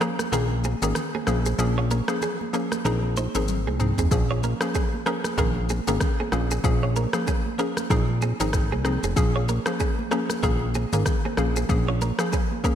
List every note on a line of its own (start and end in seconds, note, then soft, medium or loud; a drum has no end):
0.01 0.20 F3 medium
0.01 0.20 A#3 medium
0.01 0.20 C#4 medium
0.01 0.15 C#4 medium
0.01 0.20 G#4 medium
0.01 0.14 A#4 medium
0.01 cross-stick medium
0.01 shaker soft
0.19 cross-stick medium
0.19 high conga medium
0.19 shaker medium
0.32 0.75 A#1 loud
0.32 0.52 D#3 medium
0.32 0.52 A#3 medium
0.32 0.52 C#4 medium
0.32 0.46 C#4 medium
0.32 0.52 G#4 loud
0.32 0.46 A#4 medium
0.32 low conga medium
0.32 shaker medium
0.50 high conga medium
0.64 0.78 C4 medium
0.64 0.77 G#4 medium
0.64 high conga medium
0.64 shaker medium
0.82 0.94 G#1 loud
0.82 0.97 D#3 medium
0.82 0.97 A#3 medium
0.82 0.97 C#4 medium
0.82 0.93 C#4 medium
0.82 0.97 G#4 medium
0.82 0.92 A#4 medium
0.82 shaker medium
0.95 cross-stick medium
0.95 low conga medium
0.95 shaker medium
1.15 1.24 C4 medium
1.15 1.24 G#4 medium
1.15 high conga medium
1.27 1.54 A#1 loud
1.27 1.46 F3 medium
1.27 1.46 A#3 medium
1.27 1.47 C#4 medium
1.27 1.47 G#4 medium
1.27 cross-stick medium
1.27 high conga medium
1.27 shaker soft
1.46 1.56 C4 medium
1.46 1.55 G#4 medium
1.46 shaker medium
1.59 2.02 A#1 loud
1.59 1.78 F3 medium
1.59 1.78 A#3 medium
1.59 1.78 C#4 medium
1.59 1.78 G#4 loud
1.59 shaker medium
1.78 1.87 F4 medium
1.78 1.87 C#5 medium
1.91 2.04 C#4 medium
1.91 2.03 A#4 medium
1.91 high conga medium
1.91 shaker soft
2.08 2.23 F3 medium
2.08 2.23 A#3 medium
2.08 2.23 C#4 medium
2.08 2.23 G#4 medium
2.08 cross-stick loud
2.08 shaker medium
2.22 2.36 C#4 medium
2.22 2.35 G#4 medium
2.22 low conga medium
2.22 shaker medium
2.41 high conga medium
2.53 2.73 F3 medium
2.53 2.73 A#3 medium
2.53 2.73 C#4 medium
2.53 2.67 C#4 medium
2.53 2.73 G#4 medium
2.53 2.67 A#4 medium
2.53 shaker medium
2.72 cross-stick medium
2.72 high conga medium
2.72 shaker medium
2.85 3.28 A#1 loud
2.85 3.04 F3 medium
2.85 3.04 C4 medium
2.85 3.04 D#4 medium
2.85 2.99 D#4 medium
2.85 3.05 G#4 loud
2.85 2.98 A#4 medium
2.85 low conga medium
2.85 shaker medium
3.03 high conga medium
3.17 3.30 D#4 medium
3.17 3.30 C5 medium
3.17 high conga medium
3.17 shaker medium
3.35 3.68 G#1 medium
3.35 3.49 F3 medium
3.35 3.50 C4 medium
3.35 3.45 C#4 medium
3.35 3.50 D#4 medium
3.35 3.50 G#4 medium
3.35 3.45 A#4 medium
3.35 shaker medium
3.48 high tom medium
3.48 low conga medium
3.48 shaker medium
3.67 3.94 C2 medium
3.67 3.77 C4 medium
3.67 3.76 G#4 medium
3.67 high conga medium
3.79 3.99 F3 medium
3.79 3.99 C4 medium
3.79 3.99 D#4 medium
3.79 3.99 G#4 medium
3.79 mid tom medium
3.79 high conga medium
3.79 shaker soft
3.98 4.10 F1 medium
3.98 4.08 C4 medium
3.98 4.08 G#4 medium
3.98 floor tom medium
3.98 shaker medium
4.11 4.54 A#1 loud
4.11 4.31 F3 medium
4.11 4.31 A#3 medium
4.11 4.31 C#4 medium
4.11 4.31 G#4 loud
4.11 kick loud
4.11 shaker medium
4.31 4.40 F4 medium
4.31 4.39 C#5 medium
4.43 4.57 C#4 medium
4.43 4.56 A#4 medium
4.43 high conga medium
4.43 shaker soft
4.61 4.76 F3 medium
4.61 4.76 A#3 medium
4.61 4.76 C#4 medium
4.61 4.76 G#4 medium
4.61 cross-stick loud
4.61 shaker medium
4.74 4.88 C#4 medium
4.74 4.88 G#4 medium
4.74 kick medium
4.74 low conga medium
4.74 shaker medium
4.94 high conga medium
5.06 5.25 F3 medium
5.06 5.25 A#3 medium
5.06 5.25 C#4 medium
5.06 5.20 C#4 medium
5.06 5.26 G#4 medium
5.06 5.19 A#4 medium
5.06 cross-stick medium
5.06 shaker soft
5.24 cross-stick medium
5.24 high conga medium
5.24 shaker medium
5.37 5.81 A#1 loud
5.37 5.57 D#3 medium
5.37 5.57 A#3 medium
5.37 5.57 C#4 medium
5.37 5.51 C#4 medium
5.37 5.57 G#4 loud
5.37 5.51 A#4 medium
5.37 kick loud
5.37 low conga medium
5.37 shaker medium
5.56 high conga medium
5.69 5.83 C4 medium
5.69 5.83 G#4 medium
5.69 high conga medium
5.69 shaker soft
5.87 5.99 G#1 loud
5.87 6.02 D#3 medium
5.87 6.02 A#3 medium
5.87 6.02 C#4 medium
5.87 5.98 C#4 medium
5.87 6.02 G#4 medium
5.87 5.97 A#4 medium
5.87 shaker medium
6.00 kick loud
6.00 cross-stick medium
6.00 low conga medium
6.00 shaker medium
6.20 6.29 C4 medium
6.20 6.29 G#4 medium
6.20 high conga medium
6.32 6.60 A#1 loud
6.32 6.52 F3 medium
6.32 6.52 A#3 medium
6.32 6.52 C#4 medium
6.32 6.52 G#4 medium
6.32 cross-stick medium
6.32 high conga medium
6.32 shaker soft
6.51 6.61 C4 medium
6.51 6.60 G#4 medium
6.51 shaker medium
6.64 7.07 A#1 loud
6.64 6.83 F3 medium
6.64 6.83 A#3 medium
6.64 6.83 C#4 medium
6.64 6.83 G#4 loud
6.64 kick loud
6.64 shaker medium
6.83 6.93 F4 medium
6.83 6.92 C#5 medium
6.96 7.09 C#4 medium
6.96 7.09 A#4 medium
6.96 high conga medium
6.96 shaker soft
7.13 7.28 F3 medium
7.13 7.28 A#3 medium
7.13 7.28 C#4 medium
7.13 7.29 G#4 medium
7.13 cross-stick loud
7.13 shaker medium
7.27 7.41 C#4 medium
7.27 7.40 G#4 medium
7.27 kick medium
7.27 low conga medium
7.27 shaker medium
7.46 high conga medium
7.58 7.78 F3 medium
7.58 7.78 A#3 medium
7.58 7.78 C#4 medium
7.58 7.72 C#4 medium
7.58 7.78 G#4 medium
7.58 7.72 A#4 medium
7.58 shaker soft
7.77 cross-stick medium
7.77 high conga medium
7.77 shaker medium
7.90 8.33 A#1 loud
7.90 8.09 F3 loud
7.90 8.10 C4 medium
7.90 8.10 D#4 medium
7.90 8.04 D#4 medium
7.90 8.10 G#4 loud
7.90 8.03 A#4 medium
7.90 kick loud
7.90 low conga medium
7.90 shaker medium
8.08 high conga medium
8.22 8.35 C4 medium
8.22 8.35 G#4 medium
8.22 high conga medium
8.22 shaker medium
8.40 8.73 G#1 medium
8.40 8.55 F3 medium
8.40 8.55 C4 medium
8.40 8.50 C#4 medium
8.40 8.55 D#4 medium
8.40 8.55 G#4 medium
8.40 8.50 A#4 medium
8.40 shaker medium
8.53 kick loud
8.53 cross-stick medium
8.53 low conga medium
8.53 shaker medium
8.72 8.99 C2 medium
8.72 8.82 C4 medium
8.72 8.81 G#4 medium
8.72 high conga medium
8.85 9.04 F3 medium
8.85 9.04 C4 medium
8.85 9.04 D#4 medium
8.85 9.04 G#4 medium
8.85 cross-stick medium
8.85 high conga medium
8.85 shaker soft
9.03 9.15 F1 medium
9.03 9.13 C4 medium
9.03 9.13 G#4 medium
9.03 shaker medium
9.16 9.60 A#1 loud
9.16 9.36 F3 medium
9.16 9.36 A#3 medium
9.16 9.36 C#4 medium
9.16 9.36 G#4 loud
9.16 kick loud
9.16 shaker medium
9.36 9.45 F4 medium
9.36 9.45 C#5 medium
9.49 9.62 C#4 medium
9.49 9.61 A#4 medium
9.49 high conga medium
9.49 shaker medium
9.66 9.81 F3 medium
9.66 9.81 A#3 medium
9.66 9.81 C#4 medium
9.66 9.81 G#4 medium
9.66 cross-stick loud
9.66 shaker medium
9.79 9.93 C#4 medium
9.79 9.93 G#4 medium
9.79 kick medium
9.79 low conga medium
9.79 shaker medium
9.99 high conga medium
10.11 10.30 F3 medium
10.11 10.31 A#3 medium
10.11 10.31 C#4 medium
10.11 10.25 C#4 medium
10.11 10.31 G#4 medium
10.11 10.24 A#4 medium
10.11 cross-stick medium
10.11 shaker soft
10.30 cross-stick medium
10.30 high conga medium
10.30 shaker medium
10.43 10.86 A#1 loud
10.43 10.62 D#3 medium
10.43 10.62 A#3 medium
10.43 10.62 C#4 medium
10.43 10.57 C#4 medium
10.43 10.62 G#4 loud
10.43 10.56 A#4 medium
10.43 kick loud
10.43 low conga medium
10.43 shaker medium
10.61 high conga medium
10.74 10.88 C4 medium
10.74 10.88 G#4 medium
10.74 high conga medium
10.74 shaker medium
10.93 11.04 G#1 medium
10.93 11.07 D#3 medium
10.93 11.07 A#3 medium
10.93 11.08 C#4 medium
10.93 11.03 C#4 medium
10.93 11.08 G#4 medium
10.93 11.03 A#4 medium
10.93 shaker medium
11.06 kick loud
11.06 cross-stick medium
11.06 low conga medium
11.06 shaker medium
11.25 11.35 C4 medium
11.25 11.34 G#4 medium
11.25 high conga medium
11.37 11.65 A#1 medium
11.37 11.57 F3 medium
11.37 11.57 A#3 medium
11.37 11.57 C#4 medium
11.37 11.57 G#4 medium
11.37 cross-stick medium
11.37 high conga medium
11.37 shaker soft
11.56 11.66 C4 medium
11.56 11.66 G#4 medium
11.56 shaker medium
11.69 12.12 A#1 loud
11.69 11.88 F3 medium
11.69 11.89 A#3 medium
11.69 11.89 C#4 medium
11.69 11.89 G#4 loud
11.69 kick loud
11.69 shaker medium
11.88 11.98 F4 medium
11.88 11.97 C#5 medium
12.01 12.15 C#4 medium
12.01 12.14 A#4 medium
12.01 high conga medium
12.01 shaker soft
12.19 12.34 F3 medium
12.19 12.34 A#3 medium
12.19 12.34 C#4 medium
12.19 12.34 G#4 medium
12.19 cross-stick loud
12.19 shaker medium
12.32 12.46 C#4 medium
12.32 12.46 G#4 medium
12.32 kick loud
12.32 low conga medium
12.32 shaker medium
12.52 high conga medium
12.64 12.75 F3 medium
12.64 12.75 A#3 medium
12.64 12.75 C#4 medium
12.64 12.75 G#4 medium
12.64 12.75 A#4 medium
12.64 kick loud
12.64 shaker soft